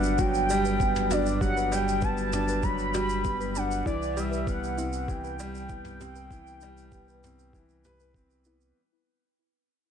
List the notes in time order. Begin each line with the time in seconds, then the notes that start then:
Already playing: G1 F#3 G3 B3 D4 F#5
0.03 shaker
0.19 F#3 F#4 G5, kick, shaker
0.34 shaker
0.49 G3 G4, shaker
0.65 B4, shaker
0.80 B3, kick, shaker
0.96 mid tom, shaker
1.11 D4 F#4 D5, mid tom, shaker
1.26 shaker
1.41 F#3 G4 F#5, kick, shaker
1.57 B4, shaker
1.72 G3 G5, shaker
1.89 shaker
2.02 B3 F#4 A5, kick, shaker
2.17 shaker
2.33 D4 G4, mid tom, shaker
2.48 B4, shaker
2.63 F#3 B5, kick, shaker
2.78 shaker
2.94 G3 F#4, mid tom, shaker
3.09 shaker
3.25 B3 G4, kick, shaker
3.40 B4, shaker
3.56 D4 F#5, shaker
3.71 shaker
3.86 C2 E3 E4 D5, kick, shaker
4.02 shaker
4.16 G3 G4 E5, shaker
4.31 B4, shaker
4.47 B3 F#5, kick, shaker
4.64 shaker
4.77 C4 E4, shaker
4.93 shaker
5.08 E3 G4 G5, kick, shaker
5.24 B4, shaker
5.40 G3, shaker
5.55 shaker
5.69 B3 E4, kick, shaker
5.85 mid tom, shaker
6.00 C4 G4, mid tom, shaker
6.16 B4, shaker
6.31 E3, kick, shaker
6.47 shaker
6.61 G3 E4, shaker
6.77 shaker
6.92 B3 G4, kick, shaker
7.08 B4, shaker
7.24 C4, mid tom, shaker
7.39 shaker
7.53 E3 E4, kick, shaker
7.69 shaker
7.85 G4 B4, mid tom, shaker
8.00 B4, shaker
8.14 C4, kick, shaker
8.30 shaker
8.45 B3 E4, shaker
8.61 shaker